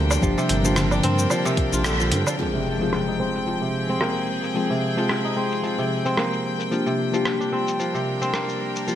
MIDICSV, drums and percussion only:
0, 0, Header, 1, 3, 480
1, 0, Start_track
1, 0, Tempo, 540541
1, 202, Time_signature, 4, 2, 24, 8
1, 7948, End_track
2, 0, Start_track
2, 0, Title_t, "Darbuka"
2, 95, Note_on_c, 9, 62, 61
2, 99, Note_on_c, 9, 63, 76
2, 184, Note_off_c, 9, 62, 0
2, 188, Note_off_c, 9, 63, 0
2, 333, Note_on_c, 9, 62, 52
2, 335, Note_on_c, 9, 63, 59
2, 421, Note_off_c, 9, 62, 0
2, 424, Note_off_c, 9, 63, 0
2, 437, Note_on_c, 9, 63, 70
2, 526, Note_off_c, 9, 63, 0
2, 682, Note_on_c, 9, 64, 84
2, 770, Note_off_c, 9, 64, 0
2, 914, Note_on_c, 9, 62, 38
2, 917, Note_on_c, 9, 64, 75
2, 1003, Note_off_c, 9, 62, 0
2, 1006, Note_off_c, 9, 64, 0
2, 1291, Note_on_c, 9, 63, 83
2, 1380, Note_off_c, 9, 63, 0
2, 1773, Note_on_c, 9, 62, 53
2, 1862, Note_off_c, 9, 62, 0
2, 1882, Note_on_c, 9, 64, 71
2, 1971, Note_off_c, 9, 64, 0
2, 2015, Note_on_c, 9, 62, 64
2, 2104, Note_off_c, 9, 62, 0
2, 7948, End_track
3, 0, Start_track
3, 0, Title_t, "Drums"
3, 94, Note_on_c, 9, 77, 80
3, 97, Note_on_c, 9, 69, 60
3, 183, Note_off_c, 9, 77, 0
3, 185, Note_off_c, 9, 69, 0
3, 199, Note_on_c, 9, 36, 113
3, 203, Note_on_c, 9, 69, 53
3, 288, Note_off_c, 9, 36, 0
3, 292, Note_off_c, 9, 69, 0
3, 337, Note_on_c, 9, 69, 29
3, 426, Note_off_c, 9, 69, 0
3, 438, Note_on_c, 9, 42, 94
3, 527, Note_off_c, 9, 42, 0
3, 575, Note_on_c, 9, 69, 67
3, 664, Note_off_c, 9, 69, 0
3, 677, Note_on_c, 9, 37, 97
3, 679, Note_on_c, 9, 69, 50
3, 766, Note_off_c, 9, 37, 0
3, 768, Note_off_c, 9, 69, 0
3, 811, Note_on_c, 9, 77, 56
3, 814, Note_on_c, 9, 69, 32
3, 900, Note_off_c, 9, 77, 0
3, 903, Note_off_c, 9, 69, 0
3, 919, Note_on_c, 9, 42, 87
3, 1008, Note_off_c, 9, 42, 0
3, 1054, Note_on_c, 9, 69, 62
3, 1143, Note_off_c, 9, 69, 0
3, 1157, Note_on_c, 9, 77, 76
3, 1159, Note_on_c, 9, 69, 49
3, 1246, Note_off_c, 9, 77, 0
3, 1248, Note_off_c, 9, 69, 0
3, 1294, Note_on_c, 9, 69, 30
3, 1383, Note_off_c, 9, 69, 0
3, 1397, Note_on_c, 9, 42, 83
3, 1398, Note_on_c, 9, 36, 100
3, 1486, Note_off_c, 9, 36, 0
3, 1486, Note_off_c, 9, 42, 0
3, 1535, Note_on_c, 9, 69, 61
3, 1624, Note_off_c, 9, 69, 0
3, 1638, Note_on_c, 9, 37, 95
3, 1640, Note_on_c, 9, 69, 51
3, 1727, Note_off_c, 9, 37, 0
3, 1729, Note_off_c, 9, 69, 0
3, 1777, Note_on_c, 9, 69, 34
3, 1865, Note_off_c, 9, 69, 0
3, 1878, Note_on_c, 9, 42, 97
3, 1967, Note_off_c, 9, 42, 0
3, 2013, Note_on_c, 9, 77, 80
3, 2016, Note_on_c, 9, 69, 68
3, 2102, Note_off_c, 9, 77, 0
3, 2105, Note_off_c, 9, 69, 0
3, 2121, Note_on_c, 9, 69, 45
3, 2210, Note_off_c, 9, 69, 0
3, 2256, Note_on_c, 9, 69, 27
3, 2345, Note_off_c, 9, 69, 0
3, 2495, Note_on_c, 9, 69, 56
3, 2584, Note_off_c, 9, 69, 0
3, 2600, Note_on_c, 9, 37, 85
3, 2602, Note_on_c, 9, 69, 48
3, 2688, Note_off_c, 9, 37, 0
3, 2691, Note_off_c, 9, 69, 0
3, 2735, Note_on_c, 9, 69, 27
3, 2824, Note_off_c, 9, 69, 0
3, 2975, Note_on_c, 9, 69, 58
3, 3064, Note_off_c, 9, 69, 0
3, 3082, Note_on_c, 9, 69, 49
3, 3171, Note_off_c, 9, 69, 0
3, 3216, Note_on_c, 9, 69, 27
3, 3305, Note_off_c, 9, 69, 0
3, 3456, Note_on_c, 9, 69, 58
3, 3544, Note_off_c, 9, 69, 0
3, 3558, Note_on_c, 9, 37, 83
3, 3561, Note_on_c, 9, 69, 49
3, 3647, Note_off_c, 9, 37, 0
3, 3649, Note_off_c, 9, 69, 0
3, 3698, Note_on_c, 9, 69, 30
3, 3787, Note_off_c, 9, 69, 0
3, 3937, Note_on_c, 9, 69, 58
3, 4026, Note_off_c, 9, 69, 0
3, 4043, Note_on_c, 9, 69, 47
3, 4132, Note_off_c, 9, 69, 0
3, 4178, Note_on_c, 9, 69, 31
3, 4266, Note_off_c, 9, 69, 0
3, 4419, Note_on_c, 9, 69, 62
3, 4507, Note_off_c, 9, 69, 0
3, 4524, Note_on_c, 9, 37, 82
3, 4526, Note_on_c, 9, 69, 49
3, 4612, Note_off_c, 9, 37, 0
3, 4615, Note_off_c, 9, 69, 0
3, 4659, Note_on_c, 9, 69, 28
3, 4748, Note_off_c, 9, 69, 0
3, 4899, Note_on_c, 9, 69, 57
3, 4988, Note_off_c, 9, 69, 0
3, 5004, Note_on_c, 9, 69, 46
3, 5093, Note_off_c, 9, 69, 0
3, 5138, Note_on_c, 9, 69, 30
3, 5227, Note_off_c, 9, 69, 0
3, 5377, Note_on_c, 9, 69, 60
3, 5466, Note_off_c, 9, 69, 0
3, 5483, Note_on_c, 9, 37, 86
3, 5485, Note_on_c, 9, 69, 50
3, 5571, Note_off_c, 9, 37, 0
3, 5574, Note_off_c, 9, 69, 0
3, 5619, Note_on_c, 9, 69, 32
3, 5708, Note_off_c, 9, 69, 0
3, 5860, Note_on_c, 9, 69, 62
3, 5949, Note_off_c, 9, 69, 0
3, 5965, Note_on_c, 9, 69, 45
3, 6053, Note_off_c, 9, 69, 0
3, 6098, Note_on_c, 9, 69, 29
3, 6186, Note_off_c, 9, 69, 0
3, 6338, Note_on_c, 9, 69, 64
3, 6427, Note_off_c, 9, 69, 0
3, 6442, Note_on_c, 9, 37, 82
3, 6444, Note_on_c, 9, 69, 51
3, 6531, Note_off_c, 9, 37, 0
3, 6533, Note_off_c, 9, 69, 0
3, 6578, Note_on_c, 9, 69, 29
3, 6667, Note_off_c, 9, 69, 0
3, 6818, Note_on_c, 9, 69, 62
3, 6906, Note_off_c, 9, 69, 0
3, 6924, Note_on_c, 9, 69, 47
3, 7012, Note_off_c, 9, 69, 0
3, 7059, Note_on_c, 9, 69, 29
3, 7147, Note_off_c, 9, 69, 0
3, 7298, Note_on_c, 9, 69, 61
3, 7387, Note_off_c, 9, 69, 0
3, 7403, Note_on_c, 9, 37, 85
3, 7405, Note_on_c, 9, 69, 51
3, 7491, Note_off_c, 9, 37, 0
3, 7494, Note_off_c, 9, 69, 0
3, 7538, Note_on_c, 9, 69, 32
3, 7627, Note_off_c, 9, 69, 0
3, 7778, Note_on_c, 9, 69, 65
3, 7867, Note_off_c, 9, 69, 0
3, 7883, Note_on_c, 9, 69, 44
3, 7948, Note_off_c, 9, 69, 0
3, 7948, End_track
0, 0, End_of_file